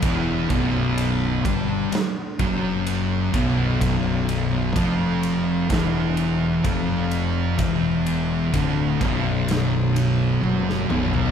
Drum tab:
RD |x-x-x-x-x-x-x-x-|x-x-x-x-x-x-x-x-|x-x-x-x-x-x-----|
SD |--------o-------|--------o-------|--------o----o--|
T1 |----------------|----------------|------------o---|
T2 |----------------|----------------|--------------o-|
FT |----------------|----------------|---------------o|
BD |o-o---o---o---o-|o---o---o---o---|o---o-o---------|